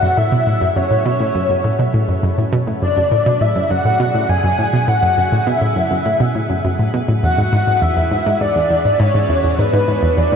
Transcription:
0.00 0.07 F#2 medium
0.00 7.23 C#3 medium
0.00 7.23 F#3 medium
0.00 10.36 G#4 medium
0.00 7.23 A4 medium
0.00 10.36 B4 medium
0.00 3.06 E5 medium
0.00 0.17 F#5 loud
0.17 0.22 A2 medium
0.17 0.78 E5 loud
0.32 0.40 B2 loud
0.47 0.58 A2 medium
0.61 0.66 F#2 medium
0.76 0.81 F#2 medium
0.76 1.94 C#5 medium
0.91 0.95 A2 medium
1.06 1.13 B2 loud
1.20 1.32 A2 medium
1.35 1.40 F#2 medium
1.50 1.54 F#2 medium
1.64 1.69 A2 medium
1.79 1.87 B2 medium
1.94 2.05 A2 medium
2.09 2.13 F#2 medium
2.23 2.28 F#2 medium
2.38 2.43 A2 medium
2.53 2.60 B2 loud
2.67 2.79 A2 medium
2.82 2.87 F#2 medium
2.82 3.43 D5 medium
2.89 8.62 F#5 medium
2.97 3.01 F#2 medium
3.12 3.16 A2 medium
3.26 3.34 B2 loud
3.41 3.52 A2 medium
3.41 3.70 E5 medium
3.56 3.60 F#2 medium
3.70 3.75 F#2 medium
3.70 4.31 F#5 loud
3.85 3.90 A2 medium
4.00 4.07 B2 loud
4.14 4.26 A2 medium
4.29 4.34 F#2 medium
4.29 4.89 G#5 loud
4.44 4.48 F#2 medium
4.59 4.63 A2 medium
4.73 4.81 B2 loud
4.88 4.99 A2 medium
4.88 5.48 F#5 loud
5.03 5.07 F#2 medium
5.17 5.22 F#2 medium
5.32 5.37 A2 medium
5.47 5.54 B2 loud
5.47 6.64 E5 medium
5.62 5.73 A2 medium
5.76 5.81 F#2 medium
5.91 5.95 F#2 medium
6.06 6.10 A2 medium
6.20 6.28 B2 medium
6.35 6.47 A2 medium
6.50 6.54 F#2 medium
6.64 6.69 F#2 medium
6.79 6.84 A2 medium
6.94 7.01 B2 loud
7.09 7.20 A2 medium
7.23 7.28 E2 medium
7.23 10.36 E3 medium
7.23 7.83 F#5 loud
7.38 7.43 G#2 medium
7.38 10.36 D4 medium
7.53 7.60 G#2 loud
7.53 10.36 E5 medium
7.67 7.79 G#2 medium
7.79 7.87 E2 medium
7.79 10.36 F#4 medium
7.79 8.40 E5 loud
7.97 8.01 E2 medium
8.12 8.16 G#2 medium
8.26 8.34 G#2 loud
8.41 8.52 G#2 medium
8.41 9.01 D5 loud
8.56 8.60 E2 medium
8.70 8.75 E2 medium
8.85 8.90 G#2 medium
9.00 9.07 G#2 loud
9.00 9.60 C#5 loud
9.14 9.26 G#2 medium
9.29 9.34 E2 medium
9.44 9.49 E2 medium
9.59 9.63 G#2 medium
9.59 10.17 B4 loud
9.73 9.81 G#2 loud
9.88 9.99 G#2 medium
10.03 10.07 E2 medium
10.17 10.22 E2 medium
10.17 10.36 D5 medium
10.32 10.36 G#2 medium

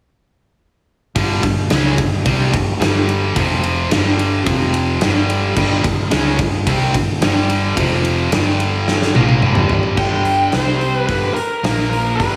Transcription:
1.16 1.42 G1 medium
1.16 1.42 G2 medium
1.16 1.42 D3 loud
1.16 1.43 G3 loud
1.16 kick medium
1.16 ride medium
1.43 1.69 G1 medium
1.43 1.66 G2 medium
1.43 1.66 D3 medium
1.43 kick medium
1.43 ride medium
1.70 1.96 C#2 loud
1.70 1.97 C#3 medium
1.70 1.98 G#3 medium
1.70 1.98 C#4 loud
1.70 snare loud
1.70 ride loud
1.98 2.24 G1 medium
1.98 2.21 G2 medium
1.98 2.21 D3 medium
1.98 kick medium
1.98 ride medium
2.25 2.51 C2 medium
2.25 2.53 C3 medium
2.25 2.53 G3 medium
2.25 2.53 C4 medium
2.25 kick medium
2.25 ride medium
2.53 2.79 G1 medium
2.53 2.76 G2 medium
2.53 2.76 D3 medium
2.53 kick medium
2.53 ride medium
2.80 3.32 G1 loud
2.80 3.35 G2 medium
2.80 3.35 D3 loud
2.80 3.35 G3 medium
2.80 snare loud
2.80 ride medium
3.09 ride medium
3.36 3.87 F1 medium
3.36 3.90 F2 medium
3.36 3.90 C3 loud
3.36 3.91 F3 medium
3.36 kick medium
3.36 ride medium
3.64 ride medium
3.90 4.42 G1 loud
3.90 4.46 G2 medium
3.90 4.46 D3 medium
3.90 4.47 G3 loud
3.90 snare loud
3.90 ride medium
4.19 ride medium
4.46 4.98 F1 medium
4.46 5.00 F2 medium
4.46 5.01 C3 medium
4.46 5.01 F3 loud
4.46 kick medium
4.46 ride medium
4.74 ride medium
5.01 5.53 G1 loud
5.01 5.55 G2 loud
5.01 5.55 D3 medium
5.01 5.56 G3 loud
5.01 snare loud
5.01 ride medium
5.30 ride medium
5.56 5.82 G1 loud
5.56 5.83 G2 medium
5.56 5.83 D3 loud
5.56 5.84 G3 loud
5.56 kick loud
5.56 crash medium
5.84 6.10 G1 medium
5.84 6.06 G2 medium
5.84 6.06 D3 medium
5.84 kick loud
5.84 ride medium
6.11 6.38 C#2 medium
6.11 6.38 C#3 medium
6.11 6.38 G#3 medium
6.11 6.38 C#4 medium
6.11 snare loud
6.11 ride medium
6.39 6.65 G1 medium
6.39 6.62 G2 medium
6.39 6.62 D3 medium
6.39 kick medium
6.39 ride medium
6.67 6.93 C2 medium
6.67 6.94 C3 medium
6.67 6.94 G3 medium
6.67 6.95 C4 medium
6.67 kick medium
6.67 ride medium
6.94 7.20 G1 medium
6.94 7.17 G2 medium
6.94 7.17 D3 medium
6.94 kick medium
6.94 ride medium
7.22 7.73 G1 medium
7.22 7.76 G2 medium
7.22 7.77 D3 medium
7.22 7.77 G3 loud
7.22 snare loud
7.22 ride medium
7.50 ride medium
7.77 8.28 F1 loud
7.77 8.31 F2 medium
7.77 8.32 C3 medium
7.77 8.32 F3 loud
7.77 kick medium
7.77 ride medium
8.05 ride medium
8.32 9.11 G1 loud
8.32 9.14 G2 medium
8.32 9.14 D3 medium
8.32 9.14 G3 loud
8.32 snare loud
8.32 ride loud
8.60 ride medium
8.88 snare medium
9.02 snare medium
9.14 9.41 A#1 medium
9.14 9.41 A#2 medium
9.14 9.42 F3 medium
9.14 9.42 A#3 medium
9.14 high tom medium
9.29 high tom medium
9.42 9.94 G1 medium
9.42 9.95 G2 medium
9.42 9.96 D3 medium
9.42 9.96 G3 medium
9.42 mid tom medium
9.55 mid tom medium
9.69 floor tom loud
9.83 floor tom medium
9.96 10.49 G1 medium
9.96 10.52 G2 medium
9.96 10.52 D3 medium
9.96 10.52 G3 medium
9.96 10.55 G5 medium
9.96 kick medium
9.96 crash medium
10.25 open hi-hat medium
10.52 11.05 C2 medium
10.52 11.07 C3 medium
10.52 11.07 G3 medium
10.52 11.08 C4 medium
10.52 10.95 C5 medium
10.52 snare medium
10.52 open hi-hat medium
10.81 open hi-hat soft
10.95 11.07 B4 medium
11.07 11.34 G1 medium
11.07 11.35 G2 medium
11.07 11.36 D3 medium
11.07 11.36 G3 medium
11.07 11.34 B4 medium
11.07 kick loud
11.07 open hi-hat medium
11.34 11.89 A#4 medium
11.34 muted distorted electric guitar stroke soft
11.34 muted fingered electric bass stroke soft
11.34 open hi-hat medium
11.63 12.15 A#1 loud
11.63 12.19 A#2 medium
11.63 12.19 F3 medium
11.63 12.19 A#3 medium
11.63 snare loud
11.63 open hi-hat medium
11.90 12.16 A#4 medium
11.90 open hi-hat soft
12.17 12.36 G1 medium
12.17 12.36 G2 medium
12.17 12.36 B4 medium
12.17 kick medium
12.17 open hi-hat medium
12.21 12.36 D3 medium
12.21 12.36 G3 medium

